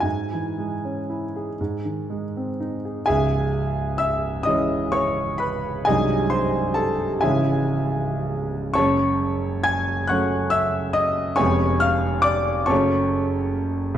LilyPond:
<<
  \new Staff \with { instrumentName = "Grand piano" } { \time 6/8 \key cis \minor \tempo 4. = 43 gis''2~ gis''8 r8 | <gis' e'' gis''>4 <e'' e'''>8 <dis'' dis'''>8 <cis'' cis'''>8 <b' b''>8 | <gis' dis'' gis''>8 <bis' bis''>8 <a' a''>8 <gis' e'' gis''>4. | <cis'' a'' cis'''>4 <gis'' gis'''>8 <fis'' cis''' fis'''>8 <e'' e'''>8 <dis'' dis'''>8 |
<cis'' gis'' cis'''>8 <eis'' eis'''>8 <d'' d'''>8 <cis'' a'' cis'''>4. | }
  \new Staff \with { instrumentName = "Grand piano" } { \clef bass \time 6/8 \key cis \minor gis,16 e16 gis16 cis'16 e'16 gis'16 gis,16 dis16 gis16 bis16 dis'16 gis'16 | <cis,, cis,>4. <e gis cis'>4. | <bis,,, bis,, fis gis dis'>4. <cis,, cis, e gis cis'>4. | <fis,, fis,>4. <fis a cis'>4. |
<eis,, eis, gis b cis'>4. <fis,, fis, fis a cis'>4. | }
>>